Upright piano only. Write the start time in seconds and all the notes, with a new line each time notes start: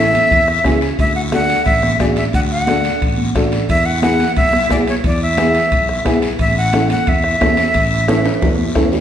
Already playing: C#4 E4
0.00 A4
0.64 C#4 E4 G#4
1.32 D4 F#4 A4
2.00 D4 F#4 G#4
2.68 D4 F#4 A4
3.35 D4 F#4 A4
4.02 B3 E4 G#4
4.69 B3 E4 G#4
5.37 B3 E4 G#4
6.05 B3 E4 G#4
6.73 C#4 E4 A4
7.41 C#4 E4 A4
8.08 C#4 E4 A4
8.75 C#4 E4 A4